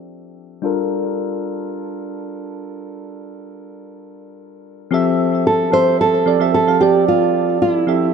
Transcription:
Already playing: synth keys F3 C4 G4 A4 E5, nylon-string guitar D4
0.62 synth keys G3 D4 F4 A4 A#4
4.91 synth keys F3 C4 G4 A4 E5
5.47 nylon-string guitar A4
5.72 synth keys F3 C4 G4 A4 E5, nylon-string guitar C5
6.01 nylon-string guitar A4
6.26 synth keys F3 C4 G4 A4 D5
6.39 synth keys F3 C4 G4 A4 E5
6.54 nylon-string guitar A4
6.67 synth keys F3 C4 G4 A4 F5
6.79 synth keys F3 C4 G4 A4 D5, nylon-string guitar G4
7.08 nylon-string guitar F4
7.62 nylon-string guitar F4
7.73 nylon-string guitar E4
7.87 synth keys F3 C4 G4 A4 E5

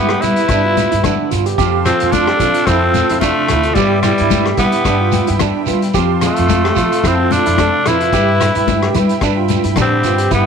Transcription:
Already playing: upright bass G2, nylon-string guitar G2 B3 E4, tenor saxophone B3, trumpet G4
0.09 tine electric piano G4, cross-stick
0.20 nylon-string guitar G3 B3, upright bass G3, tenor saxophone E4, tine electric piano E4, trumpet B4, closed hi-hat, shekere
0.36 closed hi-hat, shekere
0.49 upright bass G2, nylon-string guitar B3, tine electric piano D4, kick, cross-stick, closed hi-hat, muted conga, shekere
0.65 tine electric piano F4
0.77 closed hi-hat, high conga, shekere
0.92 upright bass G2, tine electric piano E4, closed hi-hat, shekere
1.03 nylon-string guitar D3 B3, tine electric piano D4, kick, cross-stick, closed hi-hat, high conga, low conga, shekere
1.31 upright bass G2, tine electric piano F4, nylon-string guitar B4, closed hi-hat, muted conga, shekere
1.46 tine electric piano G4, closed hi-hat
1.58 upright bass F2, nylon-string guitar F3, tine electric piano G4, accordion F5 A5 C6, kick, closed hi-hat, muted conga, shekere
1.85 tenor saxophone C4, nylon-string guitar F4, tine electric piano F4, trumpet A4, cross-stick, closed hi-hat, muted conga, shekere
2.00 upright bass F2, tine electric piano F4, closed hi-hat, shekere
2.12 tenor saxophone D4, nylon-string guitar A4, trumpet A4, kick, closed hi-hat, high conga, shekere
2.27 tine electric piano G4, cross-stick
2.39 upright bass F3, nylon-string guitar C4 A4, tine electric piano F4, kick, closed hi-hat, shekere
2.54 closed hi-hat, shekere
2.66 upright bass F2, tenor saxophone C4, tine electric piano E4, nylon-string guitar F4, trumpet A4, kick, cross-stick, closed hi-hat, muted conga, shekere
2.84 tine electric piano F4
2.94 closed hi-hat, high conga, shekere
3.09 upright bass F2, tine electric piano E4, closed hi-hat, shekere
3.20 nylon-string guitar C3 A4, tenor saxophone A3, tine electric piano D4, trumpet F4, kick, cross-stick, closed hi-hat, high conga, shekere
3.48 upright bass D2, tine electric piano E4, nylon-string guitar A4, cross-stick, closed hi-hat, muted conga, shekere
3.63 tine electric piano F4, closed hi-hat
3.74 nylon-string guitar G2 G3 B3 E4 B4, upright bass G2, tenor saxophone G3, trumpet E4, tine electric piano G4, accordion E5 G5 B5, kick, closed hi-hat, muted conga, shekere
4.02 tenor saxophone G3, nylon-string guitar B3, trumpet E4, tine electric piano E4, cross-stick, closed hi-hat, muted conga, shekere
4.18 upright bass G2, tine electric piano E4, closed hi-hat, shekere
4.30 nylon-string guitar E4, kick, closed hi-hat, high conga, shekere
4.46 tine electric piano G4, cross-stick
4.57 nylon-string guitar G3 B4, upright bass G3, tenor saxophone B3, tine electric piano E4, trumpet G4, kick, closed hi-hat, shekere
4.72 closed hi-hat, shekere
4.85 upright bass G2, nylon-string guitar B3, tine electric piano D4, kick, cross-stick, closed hi-hat, muted conga, shekere
5.01 tine electric piano F4
5.12 closed hi-hat, high conga, shekere
5.27 upright bass G2, tine electric piano E4, closed hi-hat, shekere
5.39 tine electric piano D4, nylon-string guitar E4, kick, cross-stick, closed hi-hat, high conga, low conga, shekere
5.66 upright bass G3, tine electric piano F4, nylon-string guitar B4, closed hi-hat, muted conga, shekere
5.82 closed hi-hat
5.94 upright bass F2, nylon-string guitar F3, tine electric piano G4, accordion F5 A5 C6, kick, closed hi-hat, muted conga, shekere
6.21 nylon-string guitar C4, tine electric piano F4, cross-stick, closed hi-hat, muted conga, shekere
6.26 tenor saxophone A3, trumpet F4
6.36 upright bass F2, tine electric piano F4, closed hi-hat, shekere
6.49 nylon-string guitar A4, kick, closed hi-hat, high conga, shekere
6.64 tine electric piano G4, cross-stick
6.76 upright bass F3, nylon-string guitar A3 A4, tine electric piano F4, kick, closed hi-hat, shekere
6.92 closed hi-hat, shekere
7.04 upright bass F2, nylon-string guitar C4, tenor saxophone C4, tine electric piano E4, trumpet A4, kick, cross-stick, closed hi-hat, muted conga, shekere
7.20 tine electric piano F4
7.31 tenor saxophone D4, closed hi-hat, high conga, shekere
7.35 trumpet A4
7.46 upright bass F2, tine electric piano E4, closed hi-hat, shekere
7.58 nylon-string guitar C3 A4, tine electric piano D4, kick, cross-stick, closed hi-hat, high conga, shekere
7.86 upright bass F2, nylon-string guitar C4, tine electric piano E4, tenor saxophone E4, trumpet B4, cross-stick, closed hi-hat, muted conga, shekere
8.01 closed hi-hat
8.13 nylon-string guitar G2, upright bass G2, tine electric piano G4, accordion E5 G5 B5, kick, closed hi-hat, muted conga, shekere
8.40 nylon-string guitar D4, tine electric piano E4, cross-stick, closed hi-hat, muted conga, shekere
8.55 upright bass G2, tine electric piano E4, closed hi-hat
8.67 nylon-string guitar D4, kick, closed hi-hat, high conga, shekere
8.82 tine electric piano G4, cross-stick
8.94 upright bass G3, nylon-string guitar G3 B4, tine electric piano E4, closed hi-hat, low conga, shekere
9.09 closed hi-hat, shekere
9.21 upright bass G2, tine electric piano D4, nylon-string guitar D4, kick, cross-stick, closed hi-hat, muted conga, shekere
9.37 tine electric piano F4
9.48 closed hi-hat, high conga, shekere
9.64 upright bass G2, tine electric piano E4, closed hi-hat
9.76 upright bass A2, nylon-string guitar D3 E4, tine electric piano D4, kick, cross-stick, closed hi-hat, high conga, low conga, shekere
9.80 tenor saxophone C4, trumpet G4
10.03 upright bass G2, tine electric piano F4, nylon-string guitar B4, closed hi-hat, muted conga, shekere
10.18 tine electric piano G4, closed hi-hat, shekere
10.31 upright bass G2, nylon-string guitar G2, tenor saxophone B3, tine electric piano E4, trumpet G4, kick, closed hi-hat, shekere

